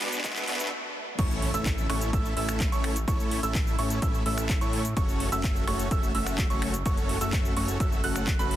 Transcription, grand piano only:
1.19 1.51 C#6 medium
1.54 1.87 E6 loud
1.90 2.10 C#6 medium
2.13 2.34 E6 medium
2.37 2.69 E6 loud
2.72 2.96 C#6 medium
3.08 3.40 C#6 medium
3.43 3.76 E6 loud
3.79 3.99 C#6 loud
4.02 4.23 E6 medium
4.26 4.58 E6 loud
4.61 4.85 C#6 medium
4.97 5.29 C#6 medium
5.32 5.65 E6 loud
5.68 5.88 C#6 medium
5.91 6.12 E6 medium
6.15 6.47 E6 loud
6.50 6.74 C#6 medium
6.86 7.18 C#6 medium
7.21 7.54 E6 loud
7.57 7.77 C#6 medium
7.80 8.01 E6 medium
8.04 8.28 F#6 loud
8.39 8.56 B5 loud

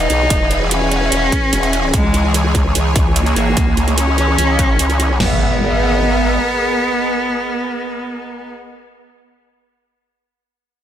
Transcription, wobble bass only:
0.10 0.29 B1 medium
0.30 1.10 E1 loud
1.12 1.31 E1 loud
1.53 1.92 E1 medium
1.94 2.74 C#2 loud
2.75 2.94 C#2 loud
2.96 3.35 C#2 medium
3.36 3.55 G#1 medium
3.57 4.37 C#2 loud
4.38 4.78 C#2 loud
4.79 5.18 C#2 medium
5.20 6.39 G#1 medium

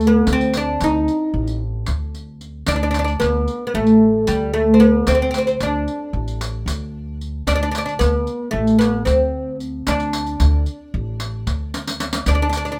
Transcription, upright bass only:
0.00 0.23 D2 medium
0.27 0.78 D2 medium
0.81 1.06 D2 medium
1.34 1.84 A1 medium
1.88 2.63 D2 medium
2.67 3.18 D2 medium
3.21 3.46 D2 medium
3.74 4.24 A1 medium
4.28 5.03 D2 medium
5.07 5.57 D2 medium
5.60 5.85 D2 medium
6.13 6.64 A1 medium
6.66 7.42 D2 medium
7.47 7.97 D2 medium
8.00 8.25 D2 medium
8.53 9.03 A1 medium
9.06 9.82 D2 medium
9.87 10.37 D2 medium
10.40 10.65 D2 medium
10.94 11.44 A1 medium
11.47 12.22 D2 medium
12.26 12.76 D2 medium

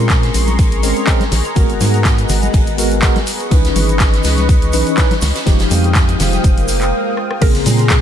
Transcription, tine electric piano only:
0.00 0.80 G#3 medium
0.00 0.80 C4 medium
0.00 0.81 C#4 medium
0.00 0.81 A#4 medium
0.83 1.05 G#3 medium
0.83 1.05 C4 medium
0.83 1.05 C#4 medium
0.83 1.05 A#4 medium
1.07 1.22 G#3 loud
1.07 1.23 C4 medium
1.07 1.23 C#4 medium
1.07 1.23 A#4 loud
1.55 2.75 G#3 medium
1.55 2.75 B3 medium
1.55 2.76 F#4 medium
1.55 2.76 A#4 medium
2.78 3.00 G#3 medium
2.78 3.00 B3 medium
2.78 3.00 F#4 medium
2.78 3.00 A#4 medium
3.02 3.18 G#3 loud
3.02 3.18 B3 medium
3.02 3.18 F#4 medium
3.02 3.18 A#4 loud
3.50 4.70 E3 medium
3.50 4.71 C#4 medium
3.50 4.71 D#4 medium
3.50 4.71 B4 medium
4.73 4.95 E3 medium
4.73 4.95 C#4 medium
4.73 4.95 D#4 medium
4.73 4.95 B4 medium
4.97 5.13 E3 loud
4.97 5.13 C#4 medium
4.97 5.13 D#4 medium
4.97 5.13 B4 loud
5.46 6.65 F3 medium
5.46 6.66 G#3 medium
5.46 6.66 D#4 medium
5.46 6.66 G4 medium
7.41 8.01 C#3 medium
7.41 8.01 A#3 medium
7.41 8.01 C4 medium
7.41 8.01 G#4 medium

